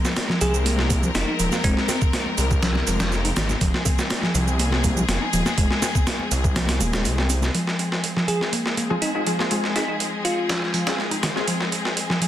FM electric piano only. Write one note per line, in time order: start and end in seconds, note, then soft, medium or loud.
0.41 0.55 G#4 medium
1.15 1.23 D#4 medium
1.28 1.35 D#4 medium
1.64 2.02 C4 medium
8.28 8.41 G#4 medium
9.02 9.10 D#4 medium
9.15 9.22 D#4 medium
9.76 9.84 D#4 medium
9.88 9.96 D#4 medium
10.25 10.94 F4 medium